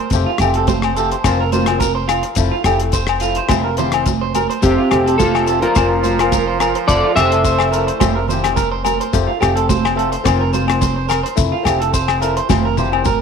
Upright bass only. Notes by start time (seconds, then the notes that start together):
0.11 F1
0.39 F1
1.24 F1
2.36 F1
2.64 F1
3.49 F1
4.64 F1
4.91 F1
5.76 F1
6.89 F1
7.16 F1
8.01 F1
9.13 F1
9.42 F1
10.25 F1
11.37 F1
11.65 F1
12.50 F1